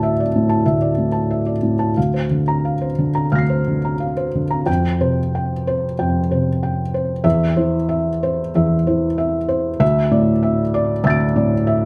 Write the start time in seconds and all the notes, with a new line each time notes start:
Already playing: D2 A2 D5 E5 A5
0.03 E5
0.20 D5
0.36 A2
0.49 A5
0.66 D2 E5
0.82 D5
0.98 A2
1.12 A5
1.31 E5
1.46 D5
1.63 A2
1.79 A5
1.97 D2 F5
2.14 C5
2.31 D3
2.48 A#5
2.65 F5
2.81 C5
2.98 D3
3.15 A#5
3.32 D2 F5 F6 A#6
3.38 C7
3.50 C5
3.68 D3
3.85 A#5
4.00 F5
4.17 C5
4.35 D3
4.51 A#5
4.66 F2 G5
5.00 C3 C5
5.35 G5
5.67 C5
5.99 F2 G5
6.31 C3 C5
6.63 G5
6.94 C5
7.24 E2 E5
7.56 E3 C5
7.89 E5
8.23 C5
8.55 E2 E5
8.87 E3 C5
9.18 E5
9.48 C5
9.80 D2 E5
10.11 A2 D5
10.43 E5
10.74 D5
11.04 D2 E5 E6 A6
11.10 D7
11.36 A2 D5
11.67 E5